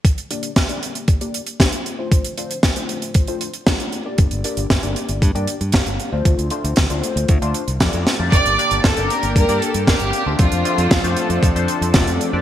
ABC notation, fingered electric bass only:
X:1
M:4/4
L:1/16
Q:1/4=116
K:Gm
V:1 name="Fingered electric bass" clef=bass
z16 | z16 | G,,, G,,, z G,,, G,,, G,,, z G,,, G,, G,, z G,, G,,, G,,, z D,, | D,, D,, z D,, D,, D,, z D,, D,, D,, z C,, F,, F,, z F,, |
G,,, G,,, z G,,, G,,, G,,, z G,,, G,, G,, z G,, G,,, G,,, z D,, | F,, F,, z F,, F,, F,, z F,, F,, F,, z F,, F,,, F,, z F,, |]